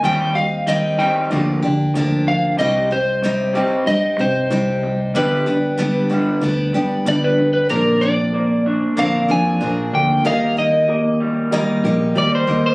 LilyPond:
<<
  \new Staff \with { instrumentName = "Electric slide guitar" } { \time 4/4 \key c \minor \tempo 4 = 94 g''8 f''8 ees''8 g''8 r4. f''8 | ees''8 c''4. ees''8 c''4. | b'2. d''16 b'8 b'16 | bes'8 d''4 r8 f''8 aes''4 g''8 |
f''8 ees''4 r4. d''16 c''8 c''16 | }
  \new Staff \with { instrumentName = "Grand piano" } { \time 4/4 \key c \minor r1 | r1 | r1 | <bes' c'' d''>4 <bes' c'' d''>4 <bes' c'' d''>4 <bes' c'' d''>4 |
<g' bes' ees''>4 <g' bes' ees''>4 <g' bes' ees''>4 <g' bes' ees''>4 | }
  \new Staff \with { instrumentName = "Steel-string acoustic guitar" } { \time 4/4 \key c \minor <ees g c' ees' g'>8 <c' ees' g'>8 <ees g c' ees' g'>8 <c' ees' g'>8 <f bes d' g'>8 <bes d' g'>8 <d f bes d' g'>4 | <c g c' ees' g'>8 <c' ees' g'>8 <c g c' ees' g'>8 <c' ees' g'>8 <g c' ees' g'>8 <c' ees' g'>8 <c g c' ees' g'>4 | <g, d g b d' g'>8 <g b d' g'>8 <g, d g b d' g'>8 <g b d' g'>8 <g b d' g'>8 <g b d' g'>8 <g, d g b d' g'>4 | <bes, d f c' d' bes'>8 <f c' d' bes'>4. <bes, d f c' d' bes'>8 <f c' d' bes'>8 <f c' d' bes'>4 |
<ees g bes ees' bes'>8 <bes ees' bes'>4. <ees g bes ees' bes'>8 <bes ees' bes'>8 <g bes ees' bes'>8 <bes ees' bes'>8 | }
  \new Staff \with { instrumentName = "Clean electric guitar" } { \clef bass \time 4/4 \key c \minor <ees g c'>8 <ees g>8 <ees g>8 <ees g c'>8 <d f bes>8 <d f>8 <d f>8 <d f>8 | <c g c'>8 <c g>8 <c g>8 <c g c'>8 <c g>8 <c g>8 <c g>8 <c g>8 | <g, d g>8 <g, d>8 <g, d>8 <g, d g>8 <g, d>8 <g, d>8 <g, d>8 <g, d>8 | bes4 bes8 d'8 bes8 f'8 d'8 bes8 |
ees4 bes8 g8 bes8 g'8 g8 bes8 | }
  \new Staff \with { instrumentName = "Fingered electric bass" } { \clef bass \time 4/4 \key c \minor ees,2 d,8 d8 d,4 | c,2 g,8 c8 c,4 | g,,2 d,8 g,8 g,,4 | bes,,2 r8 f,8 bes,,8 d,8 |
ees,2 r8 bes,,8 ees,8 ees,8 | }
>>